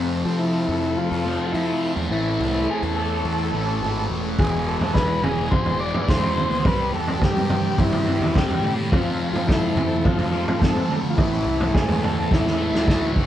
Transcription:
Already playing: F2 C3 F3 A3 C4 A4
0.25 F3
0.39 E4
0.68 F2
0.97 F4
1.11 F2
1.25 F2 C3 F3
1.47 F4
1.52 F2 C3 F3 E4
1.56 F3
1.96 E2
2.10 A1 A2 E3 A3 E4 A4
2.40 C2
2.70 G#4
2.82 E2
2.96 A4
3.25 E2
3.53 A1 A2 E3 A3
3.81 G#1 A2 E3
3.85 A3
4.10 E1
4.37 E1 E2 B2 E3 G#3 G#4, kick, floor tom
4.68 A4
4.80 E2, floor tom
4.94 B4, kick, snare, floor tom
5.22 E1 G#4, floor tom, mid tom
5.51 C5, kick, floor tom
5.65 E1, floor tom
5.79 B2 E3 D5
5.83 E2
5.94 floor tom
6.02 D5
6.08 E2 B2 E3 C5, kick, snare
6.23 floor tom
6.37 mid tom
6.50 D2
6.64 C2 C3 G3 C4 G4 B4, kick, floor tom
6.92 E2 A4
7.08 floor tom
7.21 G4, kick, snare, floor tom
7.35 G2, floor tom
7.50 floor tom, mid tom
7.78 G2 E4, kick, floor tom
7.92 floor tom, mid tom
8.06 C3 G3 C4, floor tom
8.20 E2, floor tom
8.34 C3 G3 C4 G4, kick, snare, mid tom
8.51 floor tom
8.63 A2, mid tom
8.90 F2 C3 F3 A3 C4 F4 A4, kick, floor tom
9.33 F3 F4, floor tom
9.46 E4, kick, floor tom
9.50 snare
9.75 F2, floor tom, mid tom
10.04 F4, kick, floor tom
10.18 F2, floor tom
10.32 F2 C3 F3
10.48 floor tom
10.59 F2 C3 F3 A4, kick, snare
10.64 F3
10.76 floor tom
10.90 mid tom
11.03 D3
11.10 F4
11.16 A1 A2 E3 A3 C4 E4 A4, kick, floor tom
11.45 C2
11.61 floor tom
11.74 G#4, kick, snare, floor tom
11.88 E2, floor tom
12.02 A4, floor tom, mid tom
12.31 E2 E4, kick, snare
12.47 snare
12.58 A2 E3 A3
12.73 D2, snare
12.86 A2 E3 A3, kick, snare
13.16 F1, kick

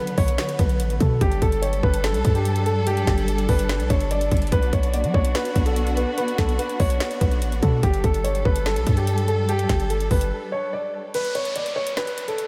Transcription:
Already playing: D3 F#3 B3 B4
0.07 closed hi-hat
0.18 B1 C#5, kick, open hi-hat
0.28 closed hi-hat
0.38 finger snap, snare, closed hi-hat
0.49 closed hi-hat
0.59 B1 B4, kick, closed hi-hat
0.69 closed hi-hat
0.80 A1, closed hi-hat
0.90 closed hi-hat
1.00 B2 A4, kick, closed hi-hat
1.21 G1 G3 D4 G4 A4, kick, closed hi-hat
1.32 closed hi-hat
1.42 G1 A4, kick, closed hi-hat
1.52 closed hi-hat
1.62 C#5, closed hi-hat
1.73 closed hi-hat
1.83 G1 B4, kick
1.94 closed hi-hat
2.04 A4, finger snap, snare, closed hi-hat
2.14 B1, closed hi-hat
2.25 G2, kick, closed hi-hat
2.35 G4, closed hi-hat
2.45 closed hi-hat
2.56 closed hi-hat
2.66 A4, closed hi-hat
2.87 G4, closed hi-hat
2.97 closed hi-hat
3.07 G1 G4, finger snap, kick, snare, closed hi-hat
3.18 closed hi-hat
3.28 A4, closed hi-hat
3.38 closed hi-hat
3.49 G1 B4, kick, open hi-hat
3.59 closed hi-hat
3.69 finger snap, snare, closed hi-hat
3.80 B1, closed hi-hat
3.90 G1 C#5, kick, closed hi-hat
4.00 closed hi-hat
4.11 D5, closed hi-hat
4.21 closed hi-hat
4.31 G1, kick, closed hi-hat
4.37 closed hi-hat
4.42 closed hi-hat
4.47 closed hi-hat
4.52 B1 B3 F#4 B4, kick, closed hi-hat
4.63 closed hi-hat
4.73 B1 C#5, kick, closed hi-hat
4.83 closed hi-hat
4.94 D5, closed hi-hat
5.04 F#3, closed hi-hat
5.14 B1 C#5, kick
5.25 closed hi-hat
5.35 B4, finger snap, snare, closed hi-hat
5.45 closed hi-hat
5.56 B1, kick, closed hi-hat
5.66 A4, closed hi-hat
5.76 closed hi-hat
5.87 closed hi-hat
5.97 B4, closed hi-hat
6.18 B4, closed hi-hat
6.28 closed hi-hat
6.38 B1 A4, finger snap, kick, snare, closed hi-hat
6.49 closed hi-hat
6.59 B4, closed hi-hat
6.69 closed hi-hat
6.80 B1 C#5, kick, open hi-hat
6.90 closed hi-hat
7.00 finger snap, snare, closed hi-hat
7.11 closed hi-hat
7.21 B1 B4, kick, closed hi-hat
7.32 closed hi-hat
7.42 A1, closed hi-hat
7.52 closed hi-hat
7.62 B2 A4, kick, closed hi-hat
7.83 G1 G3 G4 A4, kick, closed hi-hat
7.94 closed hi-hat
8.04 G1 A4, kick, closed hi-hat
8.14 closed hi-hat
8.24 C#5, closed hi-hat
8.35 closed hi-hat
8.45 G1 B4, kick
8.56 closed hi-hat
8.66 A4, finger snap, snare, closed hi-hat
8.76 B1, closed hi-hat
8.87 G2, kick, closed hi-hat
8.97 G4, closed hi-hat
9.07 closed hi-hat
9.18 closed hi-hat
9.28 A4, closed hi-hat
9.49 G4, closed hi-hat
9.59 closed hi-hat
9.69 G1 G4, finger snap, kick, snare, closed hi-hat
9.80 closed hi-hat
9.90 A4, closed hi-hat
10.00 closed hi-hat
10.11 G1 B4, kick, open hi-hat
10.21 closed hi-hat
10.52 C#5
10.73 D5
11.14 B4, closed hi-hat, downlifter
11.25 closed hi-hat
11.35 C#5, closed hi-hat
11.45 closed hi-hat
11.56 D5, closed hi-hat
11.66 closed hi-hat
11.76 C#5
11.87 closed hi-hat
11.97 B4, finger snap, snare, closed hi-hat
12.07 closed hi-hat
12.18 closed hi-hat
12.28 A4, closed hi-hat
12.38 closed hi-hat

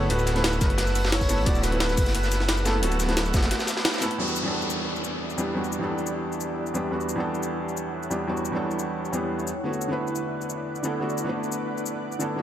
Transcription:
Already playing: A3 B3 E4 F#4 A4 B4 F#5 E6
0.09 D1 A3 B3 E4 F#4 B4, closed hi-hat, ride
0.19 ride, shaker
0.27 snare, closed hi-hat, ride, shaker
0.34 A3 B3 E4, snare, closed hi-hat
0.38 B4
0.44 snare, closed hi-hat, ride
0.53 shaker
0.61 F#1 B4, kick, snare, closed hi-hat, ride, shaker
0.70 closed hi-hat
0.78 snare, closed hi-hat, ride
0.87 snare, shaker
0.95 closed hi-hat, open hi-hat, shaker
1.04 snare, ride
1.12 C#5, snare, closed hi-hat
1.21 kick, open hi-hat, shaker
1.28 A3 B3 E4 A4, closed hi-hat, ride, shaker
1.38 A1, ride
1.45 D1 A3 B3 E4 F#4 D5, kick, closed hi-hat, ride
1.55 shaker
1.63 B4, snare, closed hi-hat, ride, shaker
1.70 A3 B3 E4, closed hi-hat
1.75 B4
1.80 snare, closed hi-hat, ride
1.89 snare, shaker
1.97 F#1, kick, closed hi-hat, open hi-hat, shaker
2.06 snare, closed hi-hat
2.15 B4, closed hi-hat, ride
2.23 snare, shaker
2.31 snare, closed hi-hat, ride, shaker
2.41 snare
2.48 snare, closed hi-hat, ride
2.58 shaker
2.65 A3 B3 E4 A4, snare, closed hi-hat, ride, shaker
2.82 D1 A3 B3 E4 F#4, closed hi-hat, ride
2.92 closed hi-hat, ride, shaker
2.99 snare, closed hi-hat, ride, shaker
3.06 A3 B3 E4, snare, closed hi-hat
3.11 B4
3.17 snare, closed hi-hat, ride
3.26 shaker
3.34 F#1, kick, snare, closed hi-hat, ride, shaker
3.38 snare, ride
3.42 snare, closed hi-hat, ride
3.51 snare, closed hi-hat, ride
3.59 snare, ride, shaker
3.67 snare, closed hi-hat, ride, shaker
3.77 snare, ride
3.85 snare, closed hi-hat, ride
3.89 snare, ride
3.94 snare, ride, shaker
3.98 A3 B3, snare, ride
4.02 E4 A4, closed hi-hat, ride, shaker
4.11 closed hi-hat
4.18 E2 G3 B3 D4 E4 F#4 G4 D5 F#5, downlifter
4.28 shaker
4.36 shaker
4.43 E2 G3 B3 D4
4.47 A4
4.62 shaker
4.70 shaker
4.96 shaker
5.04 shaker
5.30 shaker
5.37 E2 G3 B3 D4 G4, shaker
5.54 E2 G3 B3 D4 F#4
5.64 shaker
5.73 shaker
5.79 E2 G3 B3 D4
5.84 A4
5.98 shaker
6.07 shaker
6.32 shaker
6.41 shaker
6.67 shaker
6.74 E2 G3 B3 D4 G4, shaker
6.91 E2 G3 B3 D4 F#4 C#5
7.01 shaker
7.09 shaker
7.16 E2 G3 B3 D4
7.20 A4
7.35 shaker
7.43 shaker
7.69 shaker
7.77 shaker
8.03 shaker
8.10 E2 G3 B3 D4 G4, shaker
8.27 E2 G3 B3 D4 F#4
8.37 shaker
8.45 shaker
8.52 E2 G3 B3 D4
8.56 A4
8.71 shaker
8.79 shaker
9.05 shaker
9.12 E2 G3 B3 D4 G4, shaker
9.39 shaker
9.47 B4 D5 F#5, shaker
9.64 D3 A3 B3 E4 F#4
9.73 shaker
9.82 shaker
9.88 D3 A3 B3 E4
9.93 B4
10.08 shaker
10.16 shaker
10.42 shaker
10.50 shaker
10.76 shaker
10.83 D3 A3 B3 E4 A4, shaker
11.00 D3 A3 B3 E4 F#4
11.10 shaker
11.18 shaker
11.25 D3 A3 B3 E4
11.29 B4
11.44 shaker
11.52 shaker
11.78 shaker
11.86 shaker
12.12 shaker
12.19 D3 A3 B3 E4 A4, shaker
12.36 D3 A3 B3 E4 F#4

